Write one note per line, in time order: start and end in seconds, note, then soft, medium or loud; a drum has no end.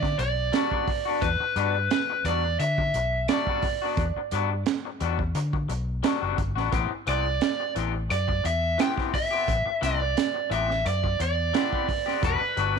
0.00 0.16 D3 medium
0.00 0.17 D5 medium
0.00 muted clean electric guitar stroke soft
0.00 kick medium
0.00 snare soft
0.18 0.50 B1 medium
0.18 1.26 D5 medium
0.18 muted clean electric guitar stroke soft
0.18 closed hi-hat medium
0.53 0.71 G3 medium
0.53 0.72 B3 medium
0.53 0.71 D4 medium
0.53 0.70 F#4 medium
0.53 snare loud
0.53 closed hi-hat medium
0.71 0.86 G3 medium
0.71 0.87 B3 medium
0.71 0.87 D4 medium
0.71 0.88 F#4 medium
0.71 kick medium
0.87 muted clean electric guitar stroke soft
0.87 kick medium
0.87 open hi-hat medium
1.05 1.27 B3 soft
1.05 1.27 D4 medium
1.05 1.26 F#4 soft
1.22 1.39 E2 loud
1.22 1.91 B4 loud
1.22 kick loud
1.22 closed hi-hat medium
1.40 muted fingered electric bass stroke soft
1.40 muted clean electric guitar stroke soft
1.56 1.88 G2 medium
1.56 1.75 G3 medium
1.56 1.75 B3 medium
1.56 1.75 D4 medium
1.56 1.74 F#4 medium
1.56 closed hi-hat medium
1.75 muted clean electric guitar stroke soft
1.91 2.23 B4 medium
1.91 snare loud
1.91 closed hi-hat medium
2.10 muted clean electric guitar stroke soft
2.24 2.56 E2 medium
2.24 2.44 G3 medium
2.24 2.44 B3 medium
2.24 2.44 D4 medium
2.24 2.60 D5 medium
2.24 closed hi-hat medium
2.29 2.43 F#4 medium
2.44 muted clean electric guitar stroke soft
2.60 2.91 D3 medium
2.60 3.29 E5 medium
2.60 muted clean electric guitar stroke soft
2.60 closed hi-hat medium
2.78 muted clean electric guitar stroke soft
2.78 kick medium
2.94 3.26 B1 medium
2.94 muted clean electric guitar stroke soft
2.94 closed hi-hat medium
3.28 3.47 G3 medium
3.28 3.47 B3 medium
3.28 3.47 D4 medium
3.28 3.46 F#4 medium
3.28 4.63 D5 medium
3.28 snare loud
3.28 closed hi-hat medium
3.47 3.63 G3 soft
3.47 3.64 B3 soft
3.47 3.64 D4 medium
3.47 3.63 F#4 medium
3.47 kick medium
3.62 muted clean electric guitar stroke soft
3.62 kick medium
3.62 open hi-hat medium
3.82 4.03 B3 soft
3.82 4.02 D4 medium
3.82 4.01 F#4 medium
3.97 4.14 E2 loud
3.97 kick loud
3.97 closed hi-hat medium
4.16 muted fingered electric bass stroke soft
4.16 muted clean electric guitar stroke soft
4.31 4.63 G2 medium
4.31 4.51 G3 medium
4.31 4.51 B3 medium
4.31 4.51 D4 medium
4.31 4.50 F#4 medium
4.31 closed hi-hat medium
4.51 muted clean electric guitar stroke soft
4.66 snare loud
4.66 closed hi-hat medium
4.85 muted clean electric guitar stroke soft
5.00 5.32 E2 medium
5.00 5.19 G3 medium
5.00 5.20 B3 medium
5.00 5.19 D4 medium
5.00 5.18 F#4 medium
5.00 closed hi-hat medium
5.19 muted clean electric guitar stroke soft
5.19 kick medium
5.35 5.66 D3 loud
5.35 muted clean electric guitar stroke soft
5.35 closed hi-hat medium
5.53 muted clean electric guitar stroke soft
5.53 kick medium
5.69 6.01 B1 medium
5.69 muted clean electric guitar stroke soft
5.69 closed hi-hat medium
6.03 6.22 G3 medium
6.03 6.22 B3 medium
6.03 6.21 D4 medium
6.03 6.20 F#4 medium
6.03 snare loud
6.03 closed hi-hat medium
6.22 6.37 F#1 medium
6.22 6.36 G3 medium
6.22 6.37 B3 medium
6.22 6.37 D4 medium
6.22 6.38 F#4 medium
6.38 6.55 G1 medium
6.38 muted clean electric guitar stroke soft
6.38 kick medium
6.38 closed hi-hat medium
6.56 6.71 A1 medium
6.56 6.71 B3 soft
6.56 6.73 D4 soft
6.56 6.72 F#4 medium
6.56 snare soft
6.71 6.89 A1 medium
6.71 6.90 E3 medium
6.71 6.91 B3 medium
6.71 6.90 C4 medium
6.71 6.89 G4 medium
6.71 kick medium
6.71 closed hi-hat medium
6.90 muted clean electric guitar stroke soft
6.90 muted fingered electric bass stroke soft
7.07 7.38 C2 medium
7.07 7.25 E3 medium
7.07 7.26 B3 medium
7.07 7.25 C4 medium
7.07 7.24 G4 medium
7.07 7.73 D5 loud
7.07 closed hi-hat medium
7.25 muted clean electric guitar stroke soft
7.41 snare loud
7.41 closed hi-hat medium
7.60 muted clean electric guitar stroke soft
7.75 8.07 A1 medium
7.75 7.94 E3 soft
7.75 7.94 B3 medium
7.75 7.94 C4 medium
7.75 7.93 G4 medium
7.75 closed hi-hat medium
7.94 muted clean electric guitar stroke soft
8.10 8.42 F#2 medium
8.10 8.43 D5 medium
8.10 muted clean electric guitar stroke soft
8.10 closed hi-hat medium
8.28 muted clean electric guitar stroke soft
8.28 kick medium
8.44 8.76 E2 medium
8.44 8.77 E5 medium
8.44 muted clean electric guitar stroke soft
8.44 closed hi-hat medium
8.78 8.97 E3 medium
8.78 8.97 B3 soft
8.78 8.96 C4 medium
8.78 8.95 G4 medium
8.78 8.90 G5 medium
8.78 snare loud
8.78 closed hi-hat medium
8.96 9.12 E3 soft
8.96 9.13 B3 soft
8.96 9.13 C4 soft
8.96 9.13 G4 medium
8.96 kick medium
8.96 snare soft
9.13 9.83 E5 medium
9.13 muted clean electric guitar stroke soft
9.13 kick medium
9.13 open hi-hat medium
9.31 9.53 B3 soft
9.31 9.52 C4 medium
9.31 9.51 G4 soft
9.48 9.65 A1 medium
9.48 kick loud
9.48 closed hi-hat medium
9.66 muted clean electric guitar stroke soft
9.81 10.14 C2 medium
9.81 10.00 E3 medium
9.81 10.01 B3 medium
9.81 10.00 C4 medium
9.81 9.99 G4 medium
9.81 10.52 D5 medium
9.81 snare soft
9.81 closed hi-hat medium
10.00 muted clean electric guitar stroke soft
10.17 snare loud
10.17 closed hi-hat medium
10.34 muted clean electric guitar stroke soft
10.50 10.82 A1 medium
10.50 10.69 E3 medium
10.50 10.69 B3 medium
10.50 10.69 C4 medium
10.50 10.67 G4 medium
10.50 10.84 E5 medium
10.50 closed hi-hat medium
10.69 muted clean electric guitar stroke soft
10.69 snare soft
10.85 11.17 F#2 medium
10.85 11.18 D5 medium
10.85 muted clean electric guitar stroke soft
10.85 closed hi-hat medium
11.03 muted clean electric guitar stroke soft
11.03 kick medium
11.20 11.51 E2 medium
11.20 12.25 D5 loud
11.20 muted clean electric guitar stroke soft
11.20 closed hi-hat medium
11.54 11.72 E3 medium
11.54 11.72 B3 medium
11.54 11.72 C4 medium
11.54 11.71 G4 medium
11.54 snare loud
11.54 closed hi-hat medium
11.72 11.87 E3 soft
11.72 11.88 B3 medium
11.72 11.88 C4 medium
11.72 11.88 G4 medium
11.72 kick medium
11.88 muted clean electric guitar stroke soft
11.88 kick medium
11.88 open hi-hat medium
12.06 12.22 B3 soft
12.06 12.23 C4 soft
12.06 12.23 G4 soft
12.06 snare soft
12.22 12.40 E1 loud
12.22 12.41 G3 medium
12.22 12.41 B3 medium
12.22 12.41 D4 medium
12.22 12.40 F#4 medium
12.22 12.79 B4 medium
12.22 kick loud
12.22 closed hi-hat medium
12.41 muted clean electric guitar stroke soft
12.41 muted fingered electric bass stroke soft
12.57 12.79 G1 medium
12.57 12.75 G3 medium
12.57 12.76 B3 medium
12.57 12.75 D4 medium
12.57 12.74 F#4 medium
12.57 closed hi-hat medium
12.76 muted clean electric guitar stroke soft